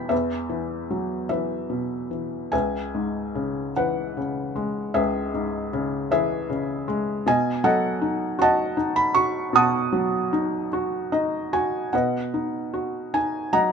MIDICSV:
0, 0, Header, 1, 2, 480
1, 0, Start_track
1, 0, Key_signature, 4, "minor"
1, 0, Tempo, 782269
1, 71, Time_signature, 6, 3, 24, 8
1, 552, Tempo, 818554
1, 1992, Tempo, 796813
1, 2952, Tempo, 765306
1, 5832, Tempo, 796813
1, 8350, End_track
2, 0, Start_track
2, 0, Title_t, "Felt piano"
2, 0, Program_c, 0, 0
2, 0, Control_c, 0, 64, 127
2, 0, Note_on_c, 0, 47, 42
2, 0, Note_on_c, 0, 52, 41
2, 0, Note_on_c, 0, 55, 43
2, 0, Note_on_c, 0, 79, 71
2, 0, Note_on_c, 0, 81, 53
2, 0, Note_on_c, 0, 83, 68
2, 56, Note_on_c, 0, 76, 61
2, 61, Note_on_c, 0, 40, 49
2, 65, Note_on_c, 0, 71, 46
2, 68, Note_off_c, 0, 83, 0
2, 78, Control_c, 0, 64, 0
2, 79, Note_off_c, 0, 52, 0
2, 80, Note_off_c, 0, 55, 0
2, 80, Note_off_c, 0, 79, 0
2, 82, Note_off_c, 0, 81, 0
2, 83, Note_off_c, 0, 47, 0
2, 174, Control_c, 0, 64, 127
2, 303, Note_on_c, 0, 52, 38
2, 555, Note_on_c, 0, 54, 37
2, 756, Note_off_c, 0, 76, 0
2, 760, Note_off_c, 0, 71, 0
2, 777, Note_off_c, 0, 52, 0
2, 782, Note_on_c, 0, 76, 54
2, 786, Note_on_c, 0, 52, 38
2, 792, Note_on_c, 0, 71, 37
2, 1019, Note_on_c, 0, 47, 34
2, 1252, Note_off_c, 0, 52, 0
2, 1261, Note_on_c, 0, 52, 32
2, 1480, Note_off_c, 0, 40, 0
2, 1486, Note_off_c, 0, 54, 0
2, 1488, Note_off_c, 0, 71, 0
2, 1491, Note_off_c, 0, 47, 0
2, 1498, Note_off_c, 0, 76, 0
2, 1499, Note_off_c, 0, 52, 0
2, 1501, Note_on_c, 0, 80, 63
2, 1504, Note_on_c, 0, 37, 41
2, 1507, Note_on_c, 0, 76, 45
2, 1510, Note_on_c, 0, 71, 44
2, 1516, Control_c, 0, 64, 0
2, 1632, Control_c, 0, 64, 127
2, 1751, Note_on_c, 0, 44, 35
2, 1990, Note_on_c, 0, 49, 41
2, 2207, Note_off_c, 0, 80, 0
2, 2210, Note_off_c, 0, 76, 0
2, 2211, Note_off_c, 0, 71, 0
2, 2239, Note_on_c, 0, 78, 60
2, 2240, Note_on_c, 0, 52, 39
2, 2244, Note_on_c, 0, 71, 45
2, 2474, Note_off_c, 0, 49, 0
2, 2483, Note_on_c, 0, 49, 39
2, 2691, Note_off_c, 0, 44, 0
2, 2715, Note_on_c, 0, 56, 43
2, 2925, Note_off_c, 0, 37, 0
2, 2932, Note_off_c, 0, 71, 0
2, 2948, Note_on_c, 0, 76, 66
2, 2949, Note_on_c, 0, 68, 52
2, 2950, Note_on_c, 0, 37, 51
2, 2953, Note_on_c, 0, 71, 46
2, 2975, Note_off_c, 0, 78, 0
2, 3174, Note_off_c, 0, 52, 0
2, 3198, Note_on_c, 0, 44, 41
2, 3418, Note_off_c, 0, 49, 0
2, 3443, Note_on_c, 0, 49, 45
2, 3655, Note_off_c, 0, 68, 0
2, 3657, Note_off_c, 0, 56, 0
2, 3657, Note_off_c, 0, 71, 0
2, 3675, Note_off_c, 0, 76, 0
2, 3681, Note_on_c, 0, 71, 47
2, 3684, Note_on_c, 0, 76, 73
2, 3686, Note_on_c, 0, 68, 54
2, 3687, Note_on_c, 0, 52, 49
2, 3912, Note_off_c, 0, 49, 0
2, 3922, Note_on_c, 0, 49, 42
2, 4139, Note_off_c, 0, 44, 0
2, 4162, Note_on_c, 0, 56, 50
2, 4376, Note_off_c, 0, 37, 0
2, 4377, Note_off_c, 0, 71, 0
2, 4379, Note_off_c, 0, 68, 0
2, 4383, Note_off_c, 0, 52, 0
2, 4387, Note_off_c, 0, 49, 0
2, 4395, Note_off_c, 0, 56, 0
2, 4404, Note_on_c, 0, 47, 54
2, 4409, Control_c, 0, 64, 0
2, 4412, Note_on_c, 0, 75, 57
2, 4412, Note_on_c, 0, 80, 89
2, 4425, Note_off_c, 0, 76, 0
2, 4540, Control_c, 0, 64, 127
2, 4636, Note_off_c, 0, 75, 0
2, 4639, Note_on_c, 0, 54, 47
2, 4640, Note_on_c, 0, 78, 83
2, 4641, Note_on_c, 0, 69, 57
2, 4646, Note_on_c, 0, 75, 58
2, 4652, Note_off_c, 0, 80, 0
2, 4875, Note_on_c, 0, 63, 47
2, 5089, Note_off_c, 0, 78, 0
2, 5108, Note_on_c, 0, 66, 57
2, 5119, Note_off_c, 0, 75, 0
2, 5127, Note_on_c, 0, 81, 92
2, 5129, Note_on_c, 0, 75, 64
2, 5129, Note_on_c, 0, 78, 66
2, 5326, Note_off_c, 0, 69, 0
2, 5339, Note_off_c, 0, 63, 0
2, 5349, Note_on_c, 0, 63, 51
2, 5468, Note_on_c, 0, 83, 91
2, 5488, Note_off_c, 0, 81, 0
2, 5565, Note_off_c, 0, 54, 0
2, 5579, Note_off_c, 0, 66, 0
2, 5584, Note_on_c, 0, 85, 83
2, 5588, Note_on_c, 0, 66, 52
2, 5593, Note_off_c, 0, 83, 0
2, 5809, Note_off_c, 0, 47, 0
2, 5815, Note_off_c, 0, 75, 0
2, 5815, Note_off_c, 0, 78, 0
2, 5825, Note_on_c, 0, 47, 61
2, 5837, Note_off_c, 0, 85, 0
2, 5840, Note_on_c, 0, 81, 72
2, 5841, Note_on_c, 0, 78, 70
2, 5841, Note_on_c, 0, 87, 90
2, 6064, Note_on_c, 0, 54, 49
2, 6280, Note_off_c, 0, 63, 0
2, 6306, Note_on_c, 0, 63, 53
2, 6519, Note_off_c, 0, 66, 0
2, 6549, Note_on_c, 0, 66, 53
2, 6765, Note_off_c, 0, 81, 0
2, 6766, Note_off_c, 0, 78, 0
2, 6766, Note_off_c, 0, 87, 0
2, 6776, Note_off_c, 0, 63, 0
2, 6785, Note_on_c, 0, 63, 50
2, 6785, Note_on_c, 0, 75, 61
2, 7002, Note_off_c, 0, 54, 0
2, 7011, Note_off_c, 0, 75, 0
2, 7021, Note_off_c, 0, 66, 0
2, 7030, Note_on_c, 0, 66, 51
2, 7031, Note_on_c, 0, 80, 66
2, 7244, Note_off_c, 0, 47, 0
2, 7257, Note_off_c, 0, 63, 0
2, 7257, Note_off_c, 0, 80, 0
2, 7266, Note_off_c, 0, 66, 0
2, 7271, Note_on_c, 0, 78, 60
2, 7274, Note_on_c, 0, 47, 46
2, 7278, Control_c, 0, 64, 0
2, 7281, Note_on_c, 0, 71, 41
2, 7282, Note_on_c, 0, 75, 46
2, 7402, Control_c, 0, 64, 127
2, 7517, Note_on_c, 0, 63, 37
2, 7757, Note_on_c, 0, 66, 41
2, 7975, Note_off_c, 0, 71, 0
2, 7976, Note_off_c, 0, 75, 0
2, 7989, Note_off_c, 0, 63, 0
2, 7998, Note_on_c, 0, 63, 44
2, 8000, Note_on_c, 0, 80, 71
2, 8016, Note_off_c, 0, 78, 0
2, 8233, Note_on_c, 0, 54, 36
2, 8234, Note_on_c, 0, 82, 83
2, 8236, Note_on_c, 0, 75, 52
2, 8237, Note_on_c, 0, 78, 53
2, 8243, Note_off_c, 0, 80, 0
2, 8350, Note_off_c, 0, 47, 0
2, 8350, Note_off_c, 0, 54, 0
2, 8350, Note_off_c, 0, 63, 0
2, 8350, Note_off_c, 0, 66, 0
2, 8350, Note_off_c, 0, 75, 0
2, 8350, Note_off_c, 0, 78, 0
2, 8350, Note_off_c, 0, 82, 0
2, 8350, End_track
0, 0, End_of_file